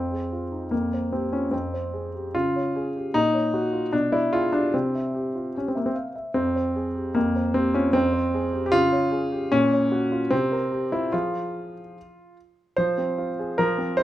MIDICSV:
0, 0, Header, 1, 2, 480
1, 0, Start_track
1, 0, Key_signature, -4, "minor"
1, 0, Tempo, 805369
1, 909, Time_signature, 2, 2, 24, 8
1, 4266, Tempo, 791557
1, 6186, Tempo, 814111
1, 8371, End_track
2, 0, Start_track
2, 0, Title_t, "Grand piano"
2, 0, Program_c, 0, 0
2, 0, Note_on_c, 0, 41, 49
2, 0, Note_on_c, 0, 60, 70
2, 73, Note_on_c, 0, 68, 34
2, 78, Control_c, 0, 64, 127
2, 194, Note_on_c, 0, 65, 37
2, 263, Note_off_c, 0, 68, 0
2, 309, Note_on_c, 0, 63, 30
2, 384, Note_off_c, 0, 65, 0
2, 416, Note_off_c, 0, 41, 0
2, 424, Note_on_c, 0, 58, 66
2, 428, Note_off_c, 0, 60, 0
2, 430, Note_off_c, 0, 63, 0
2, 430, Note_on_c, 0, 41, 46
2, 437, Control_c, 0, 64, 0
2, 540, Control_c, 0, 64, 127
2, 558, Note_on_c, 0, 72, 38
2, 667, Note_off_c, 0, 58, 0
2, 670, Note_on_c, 0, 60, 60
2, 674, Note_on_c, 0, 67, 36
2, 745, Note_off_c, 0, 72, 0
2, 790, Note_off_c, 0, 60, 0
2, 790, Note_on_c, 0, 61, 62
2, 792, Note_on_c, 0, 65, 32
2, 864, Note_off_c, 0, 67, 0
2, 895, Note_off_c, 0, 41, 0
2, 902, Note_on_c, 0, 60, 66
2, 908, Note_on_c, 0, 41, 47
2, 910, Note_off_c, 0, 61, 0
2, 910, Note_off_c, 0, 65, 0
2, 916, Control_c, 0, 64, 0
2, 1030, Control_c, 0, 64, 127
2, 1035, Note_on_c, 0, 72, 36
2, 1154, Note_on_c, 0, 68, 39
2, 1228, Note_off_c, 0, 72, 0
2, 1279, Note_on_c, 0, 67, 37
2, 1348, Note_off_c, 0, 68, 0
2, 1380, Note_off_c, 0, 41, 0
2, 1392, Note_off_c, 0, 60, 0
2, 1398, Note_off_c, 0, 67, 0
2, 1398, Note_on_c, 0, 65, 86
2, 1401, Control_c, 0, 64, 0
2, 1403, Note_on_c, 0, 49, 56
2, 1526, Note_on_c, 0, 73, 45
2, 1531, Control_c, 0, 64, 127
2, 1645, Note_on_c, 0, 68, 43
2, 1710, Note_off_c, 0, 73, 0
2, 1765, Note_on_c, 0, 67, 37
2, 1828, Note_off_c, 0, 68, 0
2, 1860, Note_off_c, 0, 49, 0
2, 1871, Note_off_c, 0, 65, 0
2, 1873, Note_on_c, 0, 63, 105
2, 1875, Control_c, 0, 64, 0
2, 1876, Note_off_c, 0, 67, 0
2, 1876, Note_on_c, 0, 46, 64
2, 1989, Note_on_c, 0, 73, 47
2, 1997, Control_c, 0, 64, 127
2, 2108, Note_on_c, 0, 66, 52
2, 2177, Note_off_c, 0, 73, 0
2, 2222, Note_on_c, 0, 65, 45
2, 2297, Note_off_c, 0, 66, 0
2, 2332, Note_off_c, 0, 46, 0
2, 2340, Note_on_c, 0, 62, 83
2, 2342, Note_off_c, 0, 65, 0
2, 2342, Note_on_c, 0, 47, 64
2, 2344, Note_off_c, 0, 63, 0
2, 2349, Control_c, 0, 64, 0
2, 2458, Note_on_c, 0, 64, 82
2, 2459, Note_on_c, 0, 74, 46
2, 2461, Note_off_c, 0, 62, 0
2, 2464, Control_c, 0, 64, 127
2, 2579, Note_on_c, 0, 65, 92
2, 2580, Note_off_c, 0, 64, 0
2, 2585, Note_on_c, 0, 68, 46
2, 2654, Note_off_c, 0, 74, 0
2, 2697, Note_on_c, 0, 62, 77
2, 2702, Note_off_c, 0, 65, 0
2, 2703, Note_on_c, 0, 67, 39
2, 2778, Note_off_c, 0, 68, 0
2, 2811, Note_off_c, 0, 47, 0
2, 2822, Note_off_c, 0, 62, 0
2, 2824, Note_on_c, 0, 60, 67
2, 2825, Note_off_c, 0, 67, 0
2, 2829, Control_c, 0, 64, 0
2, 2832, Note_on_c, 0, 48, 52
2, 2938, Control_c, 0, 64, 127
2, 2952, Note_on_c, 0, 76, 38
2, 3066, Note_on_c, 0, 67, 42
2, 3142, Note_off_c, 0, 76, 0
2, 3190, Note_on_c, 0, 65, 36
2, 3258, Note_off_c, 0, 67, 0
2, 3308, Note_off_c, 0, 65, 0
2, 3308, Note_on_c, 0, 67, 40
2, 3314, Control_c, 0, 64, 0
2, 3323, Note_on_c, 0, 61, 58
2, 3327, Note_off_c, 0, 60, 0
2, 3380, Note_off_c, 0, 61, 0
2, 3387, Note_on_c, 0, 60, 53
2, 3428, Note_on_c, 0, 76, 39
2, 3437, Note_on_c, 0, 58, 57
2, 3439, Note_off_c, 0, 60, 0
2, 3491, Note_off_c, 0, 58, 0
2, 3491, Note_on_c, 0, 60, 60
2, 3498, Note_off_c, 0, 67, 0
2, 3544, Note_on_c, 0, 77, 34
2, 3546, Note_off_c, 0, 60, 0
2, 3619, Note_off_c, 0, 76, 0
2, 3665, Note_off_c, 0, 77, 0
2, 3669, Note_on_c, 0, 76, 37
2, 3765, Note_off_c, 0, 48, 0
2, 3780, Note_on_c, 0, 60, 83
2, 3785, Note_on_c, 0, 41, 52
2, 3787, Note_off_c, 0, 76, 0
2, 3904, Control_c, 0, 64, 127
2, 3909, Note_on_c, 0, 72, 41
2, 4029, Note_on_c, 0, 68, 46
2, 4099, Note_off_c, 0, 72, 0
2, 4144, Note_on_c, 0, 67, 39
2, 4218, Note_off_c, 0, 68, 0
2, 4249, Note_off_c, 0, 41, 0
2, 4259, Note_on_c, 0, 58, 82
2, 4262, Note_off_c, 0, 60, 0
2, 4263, Note_off_c, 0, 67, 0
2, 4268, Note_on_c, 0, 41, 62
2, 4272, Control_c, 0, 64, 0
2, 4374, Control_c, 0, 64, 127
2, 4387, Note_on_c, 0, 72, 44
2, 4499, Note_on_c, 0, 60, 90
2, 4502, Note_off_c, 0, 58, 0
2, 4502, Note_on_c, 0, 67, 52
2, 4578, Note_off_c, 0, 72, 0
2, 4622, Note_off_c, 0, 60, 0
2, 4622, Note_on_c, 0, 61, 82
2, 4625, Note_on_c, 0, 65, 46
2, 4695, Note_off_c, 0, 67, 0
2, 4731, Note_off_c, 0, 41, 0
2, 4736, Note_on_c, 0, 60, 99
2, 4742, Note_off_c, 0, 61, 0
2, 4743, Note_on_c, 0, 41, 67
2, 4744, Note_off_c, 0, 65, 0
2, 4747, Control_c, 0, 64, 0
2, 4856, Note_on_c, 0, 72, 46
2, 4868, Control_c, 0, 64, 127
2, 4985, Note_on_c, 0, 68, 55
2, 5050, Note_off_c, 0, 72, 0
2, 5098, Note_on_c, 0, 67, 44
2, 5168, Note_off_c, 0, 67, 0
2, 5174, Note_off_c, 0, 68, 0
2, 5175, Note_off_c, 0, 60, 0
2, 5177, Note_on_c, 0, 67, 80
2, 5206, Note_off_c, 0, 41, 0
2, 5211, Note_on_c, 0, 65, 113
2, 5219, Note_on_c, 0, 49, 73
2, 5220, Note_off_c, 0, 67, 0
2, 5227, Control_c, 0, 64, 0
2, 5332, Control_c, 0, 64, 127
2, 5336, Note_on_c, 0, 73, 55
2, 5454, Note_on_c, 0, 68, 51
2, 5530, Note_off_c, 0, 73, 0
2, 5579, Note_on_c, 0, 67, 52
2, 5649, Note_off_c, 0, 68, 0
2, 5685, Note_off_c, 0, 49, 0
2, 5695, Note_off_c, 0, 65, 0
2, 5696, Note_on_c, 0, 61, 107
2, 5699, Note_off_c, 0, 67, 0
2, 5701, Note_on_c, 0, 46, 81
2, 5707, Control_c, 0, 64, 0
2, 5810, Control_c, 0, 64, 127
2, 5827, Note_on_c, 0, 73, 53
2, 5940, Note_on_c, 0, 66, 53
2, 6017, Note_off_c, 0, 73, 0
2, 6061, Note_on_c, 0, 65, 51
2, 6135, Note_off_c, 0, 66, 0
2, 6170, Note_off_c, 0, 46, 0
2, 6175, Note_on_c, 0, 60, 98
2, 6182, Note_off_c, 0, 61, 0
2, 6182, Note_on_c, 0, 48, 68
2, 6184, Note_off_c, 0, 65, 0
2, 6188, Control_c, 0, 64, 0
2, 6301, Note_on_c, 0, 70, 51
2, 6321, Control_c, 0, 64, 127
2, 6419, Note_on_c, 0, 67, 50
2, 6494, Note_off_c, 0, 70, 0
2, 6538, Note_off_c, 0, 60, 0
2, 6539, Note_on_c, 0, 64, 76
2, 6543, Note_on_c, 0, 65, 41
2, 6614, Note_off_c, 0, 67, 0
2, 6648, Note_off_c, 0, 48, 0
2, 6649, Note_off_c, 0, 65, 0
2, 6658, Note_on_c, 0, 65, 80
2, 6662, Note_off_c, 0, 64, 0
2, 6663, Note_on_c, 0, 68, 43
2, 6664, Note_on_c, 0, 77, 44
2, 6665, Note_on_c, 0, 53, 51
2, 6668, Control_c, 0, 64, 0
2, 6773, Control_c, 0, 64, 127
2, 7004, Note_off_c, 0, 53, 0
2, 7052, Note_off_c, 0, 68, 0
2, 7053, Note_off_c, 0, 77, 0
2, 7158, Control_c, 0, 64, 0
2, 7388, Note_off_c, 0, 65, 0
2, 7625, Note_on_c, 0, 72, 99
2, 7634, Note_on_c, 0, 53, 65
2, 7735, Control_c, 0, 64, 127
2, 7752, Note_on_c, 0, 60, 51
2, 7871, Note_on_c, 0, 65, 50
2, 7942, Note_off_c, 0, 60, 0
2, 7996, Note_on_c, 0, 68, 51
2, 8061, Note_off_c, 0, 65, 0
2, 8094, Note_off_c, 0, 53, 0
2, 8104, Note_off_c, 0, 72, 0
2, 8105, Note_on_c, 0, 70, 96
2, 8111, Note_off_c, 0, 68, 0
2, 8111, Note_on_c, 0, 53, 75
2, 8115, Control_c, 0, 64, 0
2, 8224, Control_c, 0, 64, 127
2, 8224, Note_on_c, 0, 60, 53
2, 8335, Note_on_c, 0, 72, 102
2, 8342, Note_off_c, 0, 70, 0
2, 8343, Note_on_c, 0, 64, 51
2, 8371, Note_off_c, 0, 53, 0
2, 8371, Note_off_c, 0, 60, 0
2, 8371, Note_off_c, 0, 64, 0
2, 8371, Note_off_c, 0, 72, 0
2, 8371, End_track
0, 0, End_of_file